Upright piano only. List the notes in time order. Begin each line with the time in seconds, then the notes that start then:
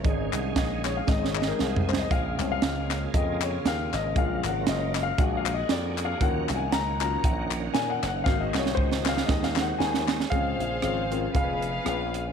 0.04 G#3 C#4 D#4
0.56 D#5
0.85 C#5
0.97 F5
1.07 G#3 C4 D#4 D#5
1.22 C#5
1.36 D#5
1.48 A#4
1.89 C5
1.99 D#5
2.11 F5
2.38 G#3 C4 C#4 C#5
2.52 F5
3.14 D#5
3.43 C#5
3.67 F5
3.95 D#5
4.15 G#3 A#3 F4 F5
4.46 F#5
4.69 D#5
5.03 F5
5.18 G#3 D4 F#4 F#5
5.37 F5
5.54 D#5
5.71 D5
6.05 F5
6.20 F3 F#3 C#4 F#5
6.56 G#5
6.72 A#5
7.00 F#3 C#4 F4 A#5
7.74 G#5
7.90 F#5
8.08 F#5
8.24 A#3 C4 F#4 F5
8.40 D#5
8.58 C#5
8.75 C5
9.09 F5
9.26 D#5
9.44 F5
9.60 F#5
9.79 G#5
10.30 C#3 C4 C#4 F4 G#4
10.82 C4 C#4 F4 G#4
11.11 C4 C#4 F4 A#4
11.34 B3 C#4 F4 G#4
11.85 B3 C#4 F4 G#4